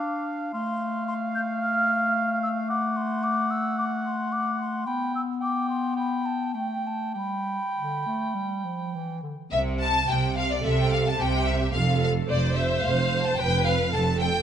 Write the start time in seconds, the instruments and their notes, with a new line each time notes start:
Already playing: clarinet D4, cor anglais F5, flute D6
0.53 clarinet A3, cor anglais F5, flute C6
1.08 flute C6
1.35 flute G6
1.61 flute F6
2.43 flute E6
2.69 cor anglais F#5, flute D6
2.96 flute C6
3.23 flute D6
3.50 flute E6
3.78 flute D6
4.06 flute C6
4.32 flute D6
4.61 flute C6
4.86 clarinet B3, cor anglais G5, flute B5
5.15 flute E6
5.41 cor anglais G5, flute D6
5.70 flute C6
5.96 cor anglais G5, flute B5
6.26 flute A5
6.54 clarinet A3, cor anglais G5, flute G5
6.87 flute A5
7.14 clarinet G3, cor anglais G5, flute B5
7.77 clarinet D3
8.06 clarinet A3
8.34 clarinet G3
8.65 clarinet F3
8.94 clarinet E3
9.22 clarinet D3
9.52 double bass section C2, cello section C3, violin section E5
9.81 violin section A5
10.08 double bass section C2, cello section C3, violin section G5
10.36 violin section F5
10.50 violin section D5
10.64 double bass section C2, cello section C3, viola section A4, violin section E5
10.78 violin section G5
10.91 violin section F5
11.06 violin section A5
11.19 double bass section C2, cello section C3, viola section G4, violin section G5
11.47 violin section E5
11.74 double bass section F1, cello section F2, viola section A4, violin section F5
12.00 violin section F5
12.29 double bass section F1, cello section F2, viola section C5, violin section D5
12.55 violin section E5
12.82 double bass section F1, cello section F2, violin section F5
13.23 violin section A5
13.38 double bass section F1, cello section F2, viola section B4, violin section G5
13.65 violin section F5
13.92 double bass section F1, cello section F2, viola section A4, violin section A5
14.20 violin section G5